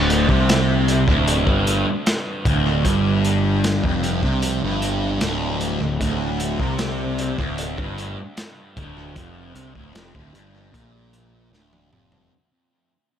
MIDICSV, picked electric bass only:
0, 0, Header, 1, 2, 480
1, 0, Start_track
1, 0, Key_signature, -1, "minor"
1, 0, Tempo, 788436
1, 1736, Time_signature, 4, 2, 24, 8
1, 8032, End_track
2, 0, Start_track
2, 0, Title_t, "Picked electric bass"
2, 0, Program_c, 0, 34
2, 0, Note_on_c, 0, 26, 95
2, 152, Note_off_c, 0, 26, 0
2, 175, Note_on_c, 0, 36, 99
2, 631, Note_off_c, 0, 36, 0
2, 655, Note_on_c, 0, 26, 88
2, 879, Note_off_c, 0, 26, 0
2, 894, Note_on_c, 0, 31, 86
2, 1118, Note_off_c, 0, 31, 0
2, 1493, Note_on_c, 0, 26, 87
2, 1718, Note_off_c, 0, 26, 0
2, 1735, Note_on_c, 0, 31, 95
2, 2311, Note_off_c, 0, 31, 0
2, 2336, Note_on_c, 0, 29, 94
2, 2560, Note_off_c, 0, 29, 0
2, 2573, Note_on_c, 0, 36, 90
2, 2798, Note_off_c, 0, 36, 0
2, 2820, Note_on_c, 0, 31, 89
2, 3154, Note_off_c, 0, 31, 0
2, 3178, Note_on_c, 0, 26, 92
2, 3514, Note_off_c, 0, 26, 0
2, 3537, Note_on_c, 0, 26, 80
2, 3649, Note_off_c, 0, 26, 0
2, 3657, Note_on_c, 0, 26, 92
2, 3993, Note_off_c, 0, 26, 0
2, 4014, Note_on_c, 0, 36, 96
2, 4472, Note_off_c, 0, 36, 0
2, 4497, Note_on_c, 0, 26, 87
2, 4721, Note_off_c, 0, 26, 0
2, 4738, Note_on_c, 0, 31, 93
2, 4962, Note_off_c, 0, 31, 0
2, 5338, Note_on_c, 0, 26, 95
2, 5562, Note_off_c, 0, 26, 0
2, 5576, Note_on_c, 0, 29, 97
2, 5801, Note_off_c, 0, 29, 0
2, 5819, Note_on_c, 0, 36, 85
2, 5931, Note_off_c, 0, 36, 0
2, 5940, Note_on_c, 0, 26, 95
2, 6049, Note_off_c, 0, 26, 0
2, 6053, Note_on_c, 0, 29, 91
2, 6168, Note_off_c, 0, 29, 0
2, 6179, Note_on_c, 0, 26, 98
2, 6291, Note_off_c, 0, 26, 0
2, 6296, Note_on_c, 0, 31, 83
2, 6521, Note_off_c, 0, 31, 0
2, 6539, Note_on_c, 0, 34, 85
2, 6995, Note_off_c, 0, 34, 0
2, 7013, Note_on_c, 0, 26, 91
2, 7239, Note_off_c, 0, 26, 0
2, 7255, Note_on_c, 0, 29, 91
2, 7480, Note_off_c, 0, 29, 0
2, 8032, End_track
0, 0, End_of_file